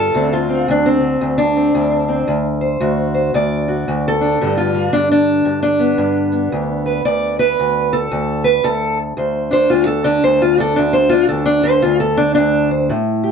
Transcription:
0.00 0.12 G2 medium
0.00 0.14 D3 soft
0.00 0.12 B3 soft
0.00 0.13 F4 soft
0.00 0.33 A4 loud
0.14 0.68 D2 medium
0.14 1.00 D3 medium
0.14 0.48 C4 medium
0.14 0.33 D4 medium
0.33 0.68 F4 medium
0.49 0.85 C4 soft
0.68 1.21 D2 medium
0.68 0.87 D4 loud
0.86 1.39 C4 medium
1.01 4.40 D3 soft
1.21 1.74 D2 medium
1.38 2.45 D4 medium
1.56 2.07 C4 soft
1.75 2.26 D2 medium
2.09 2.26 C4 soft
2.28 2.79 D2 medium
2.61 3.13 C5 soft
2.80 3.33 D2 medium
2.80 3.67 F#4 soft
3.14 3.34 C5 soft
3.34 3.87 D2 medium
3.34 4.05 D5 medium
3.68 4.05 F#4 soft
3.88 4.40 D2 medium
4.08 4.57 A4 loud
4.21 4.42 D4 soft
4.41 4.93 G2 medium
4.41 8.66 D3 soft
4.41 4.74 G3 medium
4.57 4.93 F4 loud
4.74 4.92 G3 soft
4.93 5.45 G2 medium
4.93 5.10 D4 medium
5.12 5.61 D4 medium
5.45 5.97 G2 medium
5.63 6.69 D4 loud
5.79 6.31 B3 soft
5.98 6.49 G2 medium
6.32 7.92 B3 soft
6.52 7.04 D2 medium
6.86 7.05 B4 soft
7.05 7.58 D2 medium
7.05 7.38 D5 loud
7.39 7.92 B4 loud
7.59 8.10 D2 medium
7.93 8.45 A4 loud
8.11 8.62 D2 medium
8.44 8.64 B4 loud
8.63 9.16 D2 medium
8.63 8.98 A4 loud
9.17 9.70 D2 medium
9.17 9.52 C5 medium
9.51 10.03 D4 medium
9.51 9.71 C5 loud
9.70 10.23 D2 medium
9.70 9.86 F4 medium
9.87 10.05 A4 medium
10.04 11.63 D3 medium
10.04 10.23 D4 medium
10.24 10.76 D2 medium
10.24 10.42 C5 loud
10.42 10.59 F4 medium
10.58 10.75 D4 medium
10.58 10.78 A4 loud
10.76 11.29 D2 medium
10.76 10.94 D4 medium
10.93 11.12 C5 medium
11.09 11.44 D4 soft
11.09 11.28 F4 medium
11.29 11.83 D2 medium
11.29 11.47 A4 medium
11.46 11.64 D4 loud
11.63 12.17 D3 soft
11.63 11.82 C5 loud
11.82 12.36 D2 medium
11.82 12.00 F4 medium
12.00 12.18 A4 medium
12.17 12.90 D3 soft
12.17 12.33 D4 loud
12.35 12.90 D2 medium
12.35 12.69 D4 loud
12.71 12.88 C5 soft
12.89 13.32 A2 medium
13.24 13.32 G4 soft

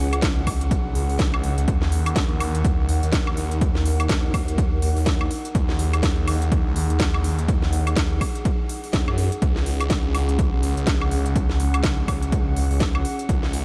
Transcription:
0.00 0.21 C#2 loud
0.00 1.64 C#4 medium
0.00 1.64 G#4 medium
0.00 9.38 F#5 medium
0.13 closed hi-hat medium
0.13 high woodblock medium
0.22 0.45 C#2 medium
0.22 kick loud
0.22 snare loud
0.22 closed hi-hat medium
0.47 0.69 C#2 loud
0.47 kick medium
0.47 open hi-hat loud
0.47 high woodblock medium
0.61 closed hi-hat medium
0.71 0.94 B1 loud
0.71 kick loud
0.71 closed hi-hat medium
0.95 1.31 C#2 loud
0.95 open hi-hat loud
1.10 open hi-hat medium
1.19 kick loud
1.19 snare loud
1.19 closed hi-hat medium
1.34 1.56 C#2 loud
1.34 high woodblock medium
1.44 open hi-hat medium
1.58 1.66 C#2 loud
1.58 closed hi-hat medium
1.68 2.15 D#2 loud
1.68 9.38 D#4 medium
1.68 5.51 A#4 medium
1.68 kick loud
1.68 closed hi-hat medium
1.82 snare soft
1.92 open hi-hat loud
2.06 closed hi-hat medium
2.06 high woodblock medium
2.16 2.39 D#2 medium
2.16 kick loud
2.16 snare loud
2.16 closed hi-hat medium
2.40 2.77 D#2 loud
2.40 open hi-hat loud
2.40 high woodblock medium
2.55 closed hi-hat medium
2.65 kick loud
2.65 closed hi-hat medium
2.79 2.87 C#2 loud
2.89 3.01 D#2 medium
2.89 open hi-hat loud
3.03 3.36 D#2 loud
3.03 closed hi-hat medium
3.12 kick loud
3.12 snare loud
3.12 closed hi-hat medium
3.27 high woodblock medium
3.37 3.73 D#2 loud
3.37 open hi-hat loud
3.51 closed hi-hat medium
3.61 kick loud
3.61 closed hi-hat medium
3.75 4.08 D#2 loud
3.75 snare soft
3.86 open hi-hat loud
4.00 closed hi-hat medium
4.00 high woodblock medium
4.09 4.32 D#2 loud
4.09 kick loud
4.09 snare loud
4.09 closed hi-hat medium
4.34 4.81 D#2 medium
4.34 kick medium
4.34 open hi-hat loud
4.34 high woodblock medium
4.48 closed hi-hat medium
4.58 kick loud
4.58 closed hi-hat medium
4.82 4.94 D#2 loud
4.82 open hi-hat loud
4.97 5.29 D#2 loud
4.97 open hi-hat medium
5.06 kick loud
5.06 snare loud
5.06 closed hi-hat medium
5.21 high woodblock medium
5.31 open hi-hat loud
5.45 closed hi-hat medium
5.55 6.02 D#2 loud
5.55 13.65 G#4 medium
5.55 kick loud
5.55 closed hi-hat medium
5.69 snare soft
5.79 open hi-hat loud
5.93 closed hi-hat medium
5.93 high woodblock medium
6.03 6.26 D#2 loud
6.03 kick loud
6.03 snare loud
6.03 closed hi-hat medium
6.28 6.64 D#2 loud
6.28 open hi-hat loud
6.28 high woodblock medium
6.42 closed hi-hat medium
6.52 kick loud
6.52 closed hi-hat medium
6.66 6.74 C#2 loud
6.76 6.88 D#2 loud
6.76 open hi-hat loud
6.90 7.23 D#2 loud
6.90 closed hi-hat soft
7.00 kick loud
7.00 snare loud
7.00 closed hi-hat medium
7.14 high woodblock medium
7.24 7.60 D#2 loud
7.24 open hi-hat loud
7.39 closed hi-hat medium
7.48 kick loud
7.48 closed hi-hat medium
7.62 7.95 D#2 loud
7.62 snare soft
7.73 open hi-hat loud
7.87 closed hi-hat medium
7.87 high woodblock medium
7.96 8.19 D#2 medium
7.96 kick loud
7.96 snare loud
7.96 closed hi-hat medium
8.21 kick medium
8.21 open hi-hat loud
8.21 high woodblock medium
8.35 closed hi-hat soft
8.45 kick loud
8.45 closed hi-hat medium
8.69 open hi-hat loud
8.84 open hi-hat medium
8.93 9.06 D#2 medium
8.93 kick loud
8.93 snare loud
8.93 closed hi-hat medium
9.08 9.30 F#2 medium
9.08 high woodblock medium
9.18 open hi-hat loud
9.32 closed hi-hat medium
9.42 9.89 C#2 loud
9.42 13.65 C#4 medium
9.42 13.65 F#5 medium
9.42 kick loud
9.42 closed hi-hat medium
9.56 snare soft
9.66 open hi-hat loud
9.80 closed hi-hat medium
9.80 high woodblock medium
9.90 10.13 C#2 loud
9.90 kick loud
9.90 snare loud
9.90 closed hi-hat medium
10.15 10.51 C#2 loud
10.15 open hi-hat loud
10.15 high woodblock medium
10.29 closed hi-hat soft
10.39 kick loud
10.39 closed hi-hat medium
10.53 10.61 B1 loud
10.63 10.75 C#2 loud
10.63 open hi-hat loud
10.77 11.10 C#2 loud
10.77 closed hi-hat soft
10.87 kick loud
10.87 snare loud
10.87 closed hi-hat medium
11.01 high woodblock medium
11.11 11.48 C#2 loud
11.11 open hi-hat loud
11.26 closed hi-hat medium
11.36 kick loud
11.36 closed hi-hat medium
11.49 11.82 C#2 loud
11.49 snare soft
11.60 open hi-hat loud
11.74 closed hi-hat medium
11.74 high woodblock medium
11.84 12.07 C#2 loud
11.84 kick loud
11.84 snare loud
11.84 closed hi-hat medium
12.08 12.55 C#2 loud
12.08 kick medium
12.08 open hi-hat loud
12.08 high woodblock medium
12.22 closed hi-hat medium
12.32 kick loud
12.32 closed hi-hat medium
12.57 12.69 C#2 loud
12.57 open hi-hat loud
12.71 13.03 C#2 loud
12.71 open hi-hat medium
12.80 kick loud
12.80 snare loud
12.80 closed hi-hat medium
12.95 high woodblock medium
13.05 open hi-hat loud
13.19 closed hi-hat medium
13.29 13.65 C#2 loud
13.29 kick loud
13.29 closed hi-hat medium
13.43 snare soft
13.53 open hi-hat loud

